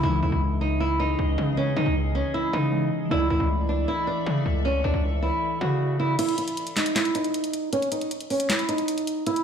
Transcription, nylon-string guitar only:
0, 0, Header, 1, 2, 480
1, 0, Start_track
1, 0, Key_signature, 4, "minor"
1, 0, Tempo, 384615
1, 42, Time_signature, 4, 2, 24, 8
1, 11776, End_track
2, 0, Start_track
2, 0, Title_t, "Nylon-string guitar"
2, 0, Program_c, 0, 24
2, 43, Note_on_c, 0, 64, 96
2, 263, Note_off_c, 0, 64, 0
2, 284, Note_on_c, 0, 64, 68
2, 504, Note_off_c, 0, 64, 0
2, 762, Note_on_c, 0, 63, 73
2, 983, Note_off_c, 0, 63, 0
2, 1003, Note_on_c, 0, 64, 88
2, 1223, Note_off_c, 0, 64, 0
2, 1243, Note_on_c, 0, 63, 85
2, 1920, Note_off_c, 0, 63, 0
2, 1963, Note_on_c, 0, 61, 97
2, 2183, Note_off_c, 0, 61, 0
2, 2201, Note_on_c, 0, 63, 79
2, 2422, Note_off_c, 0, 63, 0
2, 2682, Note_on_c, 0, 61, 78
2, 2903, Note_off_c, 0, 61, 0
2, 2922, Note_on_c, 0, 64, 82
2, 3143, Note_off_c, 0, 64, 0
2, 3160, Note_on_c, 0, 63, 78
2, 3838, Note_off_c, 0, 63, 0
2, 3884, Note_on_c, 0, 64, 98
2, 4104, Note_off_c, 0, 64, 0
2, 4122, Note_on_c, 0, 64, 73
2, 4343, Note_off_c, 0, 64, 0
2, 4603, Note_on_c, 0, 62, 74
2, 4823, Note_off_c, 0, 62, 0
2, 4842, Note_on_c, 0, 64, 89
2, 5063, Note_off_c, 0, 64, 0
2, 5083, Note_on_c, 0, 62, 74
2, 5759, Note_off_c, 0, 62, 0
2, 5803, Note_on_c, 0, 61, 93
2, 6023, Note_off_c, 0, 61, 0
2, 6042, Note_on_c, 0, 62, 81
2, 6262, Note_off_c, 0, 62, 0
2, 6521, Note_on_c, 0, 64, 82
2, 6973, Note_off_c, 0, 64, 0
2, 7002, Note_on_c, 0, 66, 69
2, 7453, Note_off_c, 0, 66, 0
2, 7482, Note_on_c, 0, 64, 85
2, 7703, Note_off_c, 0, 64, 0
2, 7722, Note_on_c, 0, 64, 100
2, 7943, Note_off_c, 0, 64, 0
2, 7964, Note_on_c, 0, 64, 69
2, 8184, Note_off_c, 0, 64, 0
2, 8443, Note_on_c, 0, 63, 78
2, 8663, Note_off_c, 0, 63, 0
2, 8682, Note_on_c, 0, 64, 92
2, 8903, Note_off_c, 0, 64, 0
2, 8924, Note_on_c, 0, 63, 87
2, 9600, Note_off_c, 0, 63, 0
2, 9644, Note_on_c, 0, 61, 103
2, 9863, Note_off_c, 0, 61, 0
2, 9882, Note_on_c, 0, 63, 77
2, 10103, Note_off_c, 0, 63, 0
2, 10363, Note_on_c, 0, 61, 82
2, 10583, Note_off_c, 0, 61, 0
2, 10602, Note_on_c, 0, 64, 83
2, 10822, Note_off_c, 0, 64, 0
2, 10841, Note_on_c, 0, 63, 84
2, 11519, Note_off_c, 0, 63, 0
2, 11564, Note_on_c, 0, 64, 104
2, 11776, Note_off_c, 0, 64, 0
2, 11776, End_track
0, 0, End_of_file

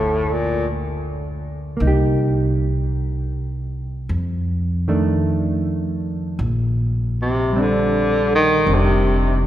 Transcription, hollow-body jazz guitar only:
0, 0, Header, 1, 2, 480
1, 0, Start_track
1, 0, Tempo, 1145038
1, 756, Time_signature, 4, 2, 24, 8
1, 3969, End_track
2, 0, Start_track
2, 0, Title_t, "Hollow-body jazz guitar"
2, 0, Program_c, 0, 26
2, 0, Note_on_c, 0, 55, 41
2, 0, Note_on_c, 0, 65, 38
2, 0, Note_on_c, 0, 69, 37
2, 741, Note_on_c, 0, 58, 45
2, 752, Note_off_c, 0, 55, 0
2, 757, Note_off_c, 0, 65, 0
2, 760, Note_off_c, 0, 69, 0
2, 763, Note_on_c, 0, 63, 45
2, 785, Note_on_c, 0, 67, 48
2, 1712, Note_off_c, 0, 58, 0
2, 1723, Note_off_c, 0, 63, 0
2, 1735, Note_off_c, 0, 67, 0
2, 2045, Note_on_c, 0, 51, 49
2, 2049, Note_on_c, 0, 57, 50
2, 2051, Note_on_c, 0, 62, 46
2, 2678, Note_off_c, 0, 51, 0
2, 2680, Note_off_c, 0, 57, 0
2, 2681, Note_off_c, 0, 62, 0
2, 3155, Note_on_c, 0, 55, 40
2, 3170, Note_on_c, 0, 60, 43
2, 3177, Note_on_c, 0, 62, 47
2, 3624, Note_off_c, 0, 55, 0
2, 3629, Note_on_c, 0, 55, 35
2, 3632, Note_off_c, 0, 60, 0
2, 3637, Note_on_c, 0, 60, 39
2, 3638, Note_off_c, 0, 62, 0
2, 3643, Note_on_c, 0, 62, 46
2, 3969, Note_off_c, 0, 55, 0
2, 3969, Note_off_c, 0, 60, 0
2, 3969, Note_off_c, 0, 62, 0
2, 3969, End_track
0, 0, End_of_file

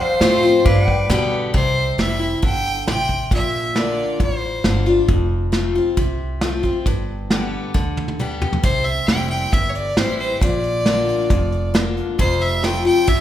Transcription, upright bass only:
0, 0, Header, 1, 2, 480
1, 0, Start_track
1, 0, Tempo, 443459
1, 1674, Time_signature, 4, 2, 24, 8
1, 14294, End_track
2, 0, Start_track
2, 0, Title_t, "Upright bass"
2, 0, Program_c, 0, 32
2, 222, Note_on_c, 0, 45, 93
2, 694, Note_off_c, 0, 45, 0
2, 709, Note_on_c, 0, 43, 91
2, 1177, Note_off_c, 0, 43, 0
2, 1190, Note_on_c, 0, 47, 95
2, 1657, Note_off_c, 0, 47, 0
2, 1668, Note_on_c, 0, 36, 84
2, 2045, Note_off_c, 0, 36, 0
2, 2141, Note_on_c, 0, 29, 71
2, 2553, Note_off_c, 0, 29, 0
2, 2627, Note_on_c, 0, 31, 77
2, 3037, Note_off_c, 0, 31, 0
2, 3105, Note_on_c, 0, 33, 75
2, 3516, Note_off_c, 0, 33, 0
2, 3584, Note_on_c, 0, 34, 84
2, 4339, Note_off_c, 0, 34, 0
2, 4541, Note_on_c, 0, 33, 80
2, 4953, Note_off_c, 0, 33, 0
2, 5023, Note_on_c, 0, 31, 82
2, 5435, Note_off_c, 0, 31, 0
2, 5503, Note_on_c, 0, 29, 89
2, 6258, Note_off_c, 0, 29, 0
2, 6461, Note_on_c, 0, 36, 76
2, 7217, Note_off_c, 0, 36, 0
2, 7422, Note_on_c, 0, 31, 81
2, 8178, Note_off_c, 0, 31, 0
2, 8381, Note_on_c, 0, 38, 71
2, 9138, Note_off_c, 0, 38, 0
2, 9342, Note_on_c, 0, 36, 80
2, 9723, Note_off_c, 0, 36, 0
2, 9827, Note_on_c, 0, 29, 80
2, 10239, Note_off_c, 0, 29, 0
2, 10312, Note_on_c, 0, 31, 78
2, 10721, Note_off_c, 0, 31, 0
2, 10788, Note_on_c, 0, 33, 77
2, 11200, Note_off_c, 0, 33, 0
2, 11271, Note_on_c, 0, 34, 84
2, 12025, Note_off_c, 0, 34, 0
2, 12233, Note_on_c, 0, 29, 86
2, 12987, Note_off_c, 0, 29, 0
2, 13190, Note_on_c, 0, 29, 86
2, 13946, Note_off_c, 0, 29, 0
2, 14151, Note_on_c, 0, 36, 84
2, 14294, Note_off_c, 0, 36, 0
2, 14294, End_track
0, 0, End_of_file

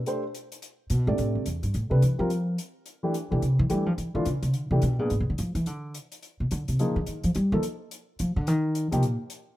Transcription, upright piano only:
0, 0, Header, 1, 2, 480
1, 0, Start_track
1, 0, Key_signature, 0, "major"
1, 0, Tempo, 280112
1, 108, Time_signature, 4, 2, 24, 8
1, 16397, End_track
2, 0, Start_track
2, 0, Title_t, "Upright piano"
2, 0, Program_c, 0, 0
2, 114, Note_on_c, 0, 57, 50
2, 119, Note_on_c, 0, 62, 45
2, 123, Note_on_c, 0, 67, 46
2, 135, Note_on_c, 0, 72, 57
2, 376, Note_off_c, 0, 57, 0
2, 378, Note_off_c, 0, 62, 0
2, 381, Note_off_c, 0, 67, 0
2, 387, Note_off_c, 0, 72, 0
2, 1834, Note_on_c, 0, 48, 52
2, 1842, Note_on_c, 0, 57, 49
2, 1847, Note_on_c, 0, 62, 43
2, 1854, Note_on_c, 0, 74, 59
2, 1856, Note_on_c, 0, 67, 50
2, 2464, Note_off_c, 0, 48, 0
2, 2468, Note_off_c, 0, 57, 0
2, 2470, Note_off_c, 0, 62, 0
2, 2474, Note_off_c, 0, 74, 0
2, 2475, Note_off_c, 0, 67, 0
2, 3254, Note_on_c, 0, 57, 48
2, 3257, Note_on_c, 0, 62, 48
2, 3269, Note_on_c, 0, 67, 46
2, 3275, Note_on_c, 0, 71, 59
2, 3433, Note_off_c, 0, 57, 0
2, 3434, Note_off_c, 0, 62, 0
2, 3440, Note_off_c, 0, 67, 0
2, 3443, Note_off_c, 0, 71, 0
2, 3744, Note_on_c, 0, 55, 53
2, 3760, Note_on_c, 0, 60, 46
2, 3763, Note_on_c, 0, 65, 50
2, 3773, Note_on_c, 0, 70, 65
2, 3917, Note_off_c, 0, 55, 0
2, 3925, Note_off_c, 0, 60, 0
2, 3927, Note_off_c, 0, 65, 0
2, 3932, Note_off_c, 0, 70, 0
2, 5192, Note_on_c, 0, 52, 57
2, 5205, Note_on_c, 0, 57, 51
2, 5212, Note_on_c, 0, 62, 55
2, 5212, Note_on_c, 0, 67, 66
2, 5361, Note_off_c, 0, 52, 0
2, 5368, Note_off_c, 0, 57, 0
2, 5371, Note_off_c, 0, 62, 0
2, 5371, Note_off_c, 0, 67, 0
2, 5667, Note_on_c, 0, 52, 52
2, 5673, Note_on_c, 0, 57, 46
2, 5681, Note_on_c, 0, 62, 46
2, 5690, Note_on_c, 0, 67, 53
2, 5839, Note_off_c, 0, 52, 0
2, 5842, Note_off_c, 0, 57, 0
2, 5846, Note_off_c, 0, 62, 0
2, 5850, Note_off_c, 0, 67, 0
2, 6328, Note_on_c, 0, 52, 58
2, 6331, Note_on_c, 0, 57, 52
2, 6343, Note_on_c, 0, 62, 48
2, 6344, Note_on_c, 0, 67, 60
2, 6601, Note_off_c, 0, 52, 0
2, 6603, Note_off_c, 0, 57, 0
2, 6608, Note_off_c, 0, 62, 0
2, 6609, Note_off_c, 0, 67, 0
2, 7102, Note_on_c, 0, 52, 58
2, 7117, Note_on_c, 0, 57, 48
2, 7118, Note_on_c, 0, 62, 56
2, 7124, Note_on_c, 0, 65, 59
2, 7277, Note_off_c, 0, 52, 0
2, 7284, Note_off_c, 0, 57, 0
2, 7285, Note_off_c, 0, 62, 0
2, 7288, Note_off_c, 0, 65, 0
2, 8074, Note_on_c, 0, 52, 53
2, 8084, Note_on_c, 0, 57, 52
2, 8088, Note_on_c, 0, 62, 50
2, 8095, Note_on_c, 0, 67, 60
2, 8243, Note_off_c, 0, 52, 0
2, 8248, Note_off_c, 0, 57, 0
2, 8250, Note_off_c, 0, 62, 0
2, 8254, Note_off_c, 0, 67, 0
2, 8549, Note_on_c, 0, 56, 53
2, 8557, Note_on_c, 0, 59, 51
2, 8567, Note_on_c, 0, 62, 50
2, 8568, Note_on_c, 0, 68, 58
2, 8721, Note_off_c, 0, 56, 0
2, 8725, Note_off_c, 0, 59, 0
2, 8730, Note_off_c, 0, 62, 0
2, 8730, Note_off_c, 0, 68, 0
2, 11645, Note_on_c, 0, 53, 58
2, 11651, Note_on_c, 0, 58, 56
2, 11660, Note_on_c, 0, 63, 56
2, 11667, Note_on_c, 0, 68, 61
2, 11902, Note_off_c, 0, 53, 0
2, 11906, Note_off_c, 0, 58, 0
2, 11910, Note_off_c, 0, 63, 0
2, 11913, Note_off_c, 0, 68, 0
2, 12894, Note_on_c, 0, 53, 50
2, 12904, Note_on_c, 0, 58, 54
2, 12905, Note_on_c, 0, 63, 47
2, 12913, Note_on_c, 0, 69, 62
2, 13056, Note_off_c, 0, 53, 0
2, 13061, Note_off_c, 0, 58, 0
2, 13062, Note_off_c, 0, 63, 0
2, 13066, Note_off_c, 0, 69, 0
2, 15277, Note_on_c, 0, 53, 58
2, 15292, Note_on_c, 0, 58, 58
2, 15297, Note_on_c, 0, 63, 54
2, 15303, Note_on_c, 0, 67, 68
2, 15448, Note_off_c, 0, 53, 0
2, 15455, Note_off_c, 0, 58, 0
2, 15457, Note_off_c, 0, 63, 0
2, 15460, Note_off_c, 0, 67, 0
2, 16397, End_track
0, 0, End_of_file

